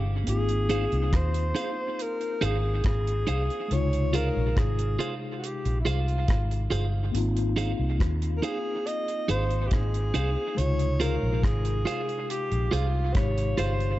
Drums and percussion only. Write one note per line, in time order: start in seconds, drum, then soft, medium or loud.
0.27 closed hi-hat medium
0.49 closed hi-hat medium
0.70 closed hi-hat medium
0.92 closed hi-hat soft
1.13 kick loud
1.13 cross-stick loud
1.13 closed hi-hat medium
1.34 closed hi-hat medium
1.56 closed hi-hat medium
1.99 closed hi-hat medium
2.21 closed hi-hat soft
2.42 closed hi-hat medium
2.84 kick loud
2.84 cross-stick loud
2.84 closed hi-hat medium
3.07 closed hi-hat soft
3.27 closed hi-hat medium
3.50 closed hi-hat soft
3.71 closed hi-hat medium
3.93 closed hi-hat soft
4.14 closed hi-hat medium
4.57 kick loud
4.57 cross-stick loud
4.57 closed hi-hat medium
4.79 closed hi-hat medium
5.00 closed hi-hat medium
5.44 closed hi-hat medium
5.65 closed hi-hat soft
5.86 closed hi-hat medium
6.08 closed hi-hat soft
6.28 kick loud
6.28 cross-stick loud
6.28 closed hi-hat medium
6.51 closed hi-hat soft
6.71 closed hi-hat medium
7.15 closed hi-hat medium
7.37 closed hi-hat soft
7.58 closed hi-hat medium
8.00 kick loud
8.00 cross-stick loud
8.00 closed hi-hat medium
8.22 closed hi-hat medium
8.43 closed hi-hat medium
8.87 closed hi-hat medium
9.08 closed hi-hat soft
9.29 closed hi-hat medium
9.51 closed hi-hat soft
9.71 kick loud
9.71 cross-stick loud
9.71 closed hi-hat medium
9.94 closed hi-hat soft
10.14 closed hi-hat medium
10.58 closed hi-hat medium
10.79 closed hi-hat soft
11.01 closed hi-hat medium
11.44 kick loud
11.44 cross-stick loud
11.44 closed hi-hat medium
11.65 closed hi-hat medium
11.87 closed hi-hat medium
12.09 closed hi-hat soft
12.30 closed hi-hat medium
12.52 closed hi-hat soft
12.73 closed hi-hat medium
13.15 kick loud
13.15 cross-stick loud
13.15 closed hi-hat medium
13.38 closed hi-hat soft
13.58 closed hi-hat medium
13.80 closed hi-hat soft